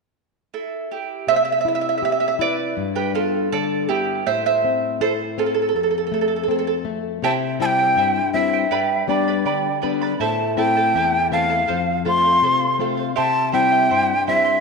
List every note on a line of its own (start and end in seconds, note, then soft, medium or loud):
0.54 0.88 E4 medium
0.54 0.92 A4 medium
0.91 1.26 E4 soft
0.91 1.29 G4 medium
1.27 2.73 C3 soft
1.27 1.35 C5 medium
1.27 1.35 E5 medium
1.36 1.43 E5 medium
1.45 1.51 E5 medium
1.52 1.58 E5 soft
1.61 1.67 E5 medium
1.65 2.01 E4 soft
1.65 1.74 E5 soft
1.75 1.80 E5 medium
1.81 1.88 E5 soft
1.89 1.96 E5 soft
1.98 2.04 E5 soft
2.02 2.39 G4 soft
2.02 2.11 E5 medium
2.12 2.19 E5 medium
2.20 2.26 E5 medium
2.28 2.34 E5 medium
2.39 2.76 E4 soft
2.39 2.93 B4 soft
2.39 2.93 D5 medium
2.77 4.22 G2 medium
2.95 3.13 G4 medium
2.95 3.15 B4 medium
3.14 3.50 B3 soft
3.14 3.49 F4 soft
3.14 3.49 A4 medium
3.52 3.88 D3 soft
3.52 3.87 A4 medium
3.52 3.87 D5 soft
3.89 4.25 B3 soft
3.89 4.24 E4 soft
3.89 4.27 G4 medium
4.27 5.71 A2 medium
4.27 4.44 C5 medium
4.27 4.44 E5 medium
4.46 4.97 C5 medium
4.46 5.03 E5 medium
4.64 5.00 C4 soft
5.01 5.37 E4 soft
5.01 5.11 A4 soft
5.01 5.11 C5 medium
5.38 5.74 C4 soft
5.38 5.45 F4 soft
5.38 5.45 A4 medium
5.46 5.53 A4 soft
5.54 5.61 A4 soft
5.62 5.67 A4 soft
5.69 5.75 A4 soft
5.74 7.19 F2 medium
5.74 5.82 A4 soft
5.83 5.89 A4 soft
5.91 5.97 A4 soft
5.98 6.05 A4 soft
6.07 6.12 A4 soft
6.12 6.48 A3 soft
6.12 6.20 A4 soft
6.21 6.27 A4 soft
6.28 6.35 A4 soft
6.36 6.42 A4 soft
6.43 6.50 A4 soft
6.48 6.85 C4 soft
6.48 6.57 A4 soft
6.59 6.65 A4 soft
6.67 6.74 A4 soft
6.85 7.22 A3 soft
7.22 7.95 C3 medium
7.22 7.59 E4 medium
7.22 7.61 G4 medium
7.22 7.60 C5 medium
7.22 7.59 E5 medium
7.22 7.60 G5 medium
7.22 7.33 A5 medium
7.60 8.19 G3 soft
7.60 8.20 C4 soft
7.60 7.79 E4 medium
7.60 8.20 E4 soft
7.60 7.79 C5 medium
7.60 7.79 E5 soft
7.60 7.78 G5 medium
7.60 7.67 A5 medium
7.66 8.32 G5 medium
7.79 7.97 E4 soft
7.79 7.98 C5 soft
7.79 7.98 G5 soft
7.96 8.69 G2 medium
7.96 8.34 E4 medium
7.96 8.34 C5 medium
7.96 8.33 E5 medium
7.96 8.35 G5 medium
8.33 8.64 G3 soft
8.33 8.64 C4 soft
8.33 8.64 E4 soft
8.33 8.54 E4 medium
8.33 8.52 C5 soft
8.33 9.04 E5 medium
8.33 8.53 E5 soft
8.33 8.52 G5 medium
8.53 8.71 E4 soft
8.53 8.71 C5 soft
8.53 8.70 G5 soft
8.71 9.43 G2 medium
8.71 9.09 G4 medium
8.71 9.08 B4 medium
8.71 9.09 D5 medium
8.71 9.08 G5 medium
8.71 9.09 B5 medium
9.08 9.68 G3 soft
9.08 9.68 B3 soft
9.08 9.68 D4 soft
9.08 9.28 B4 soft
9.08 9.79 D5 medium
9.08 9.27 D5 medium
9.08 9.28 G5 soft
9.08 9.26 B5 medium
9.28 9.45 B4 soft
9.28 9.45 D5 soft
9.28 9.45 B5 soft
9.45 10.18 D3 medium
9.45 9.81 B4 medium
9.45 9.82 D5 medium
9.45 9.80 G5 medium
9.45 9.82 B5 medium
9.82 10.13 G3 soft
9.82 10.13 B3 soft
9.82 10.13 D4 soft
9.82 10.01 B4 medium
9.82 10.01 D5 medium
9.82 10.01 G5 medium
9.82 10.00 B5 medium
10.02 10.20 B4 soft
10.02 10.21 D5 soft
10.02 10.20 B5 soft
10.20 10.92 A2 medium
10.20 10.57 E4 medium
10.20 10.57 A4 medium
10.20 10.57 C5 medium
10.20 10.56 E5 medium
10.20 10.57 A5 medium
10.20 10.56 A5 medium
10.57 11.16 A3 soft
10.57 11.17 C4 soft
10.57 11.17 E4 soft
10.57 10.76 E4 medium
10.57 10.75 A4 medium
10.57 10.76 E5 medium
10.57 11.28 G5 medium
10.57 10.75 A5 medium
10.77 10.95 E4 soft
10.77 10.95 A4 soft
10.77 10.95 A5 soft
10.94 11.66 E2 medium
10.94 11.31 E4 soft
10.94 11.32 A4 medium
10.94 11.31 E5 medium
10.94 11.32 A5 medium
11.31 11.61 E3 soft
11.31 11.61 A3 soft
11.31 11.61 C4 soft
11.31 11.50 E4 medium
11.31 11.49 A4 soft
11.31 11.50 E5 soft
11.31 12.02 F5 medium
11.31 11.48 A5 medium
11.50 11.67 E4 soft
11.50 11.66 A4 soft
11.50 11.68 A5 soft
11.67 12.41 F2 medium
11.67 12.04 A4 medium
11.67 12.05 C5 medium
11.67 12.05 F5 medium
12.05 12.65 A3 soft
12.05 12.65 C4 soft
12.05 12.65 F4 soft
12.05 12.24 A4 medium
12.05 12.24 C5 soft
12.05 12.23 F5 medium
12.05 12.77 C6 medium
12.24 12.43 C5 soft
12.24 12.43 F5 soft
12.42 13.14 C3 medium
12.42 12.79 A4 soft
12.42 12.80 C5 medium
12.42 12.80 F5 soft
12.79 13.09 A3 soft
12.79 13.09 C4 soft
12.79 13.10 F4 soft
12.79 12.98 A4 soft
12.79 12.97 C5 medium
12.79 12.96 F5 medium
12.97 13.15 C5 soft
12.97 13.15 F5 soft
13.16 13.89 C3 medium
13.16 13.51 E4 medium
13.16 13.53 G4 medium
13.16 13.51 C5 medium
13.16 13.52 E5 medium
13.16 13.51 A5 medium
13.16 13.52 C6 medium
13.52 14.13 G3 soft
13.52 14.13 C4 soft
13.52 13.72 E4 medium
13.52 14.13 E4 soft
13.52 13.71 C5 soft
13.52 13.71 E5 medium
13.52 14.24 G5 medium
13.52 13.70 C6 medium
13.72 13.89 E4 soft
13.72 13.89 E5 soft
13.72 13.90 C6 soft
13.90 14.60 G2 medium
13.90 14.26 E4 medium
13.90 14.26 C5 medium
13.90 14.27 E5 medium
13.90 14.26 C6 medium
14.27 14.58 G3 soft
14.27 14.58 C4 soft
14.27 14.45 E4 soft
14.27 14.58 E4 soft
14.27 14.46 C5 soft
14.27 14.44 E5 medium
14.27 14.60 E5 medium
14.27 14.43 C6 medium
14.45 14.60 E4 soft
14.45 14.60 E5 soft
14.45 14.60 C6 soft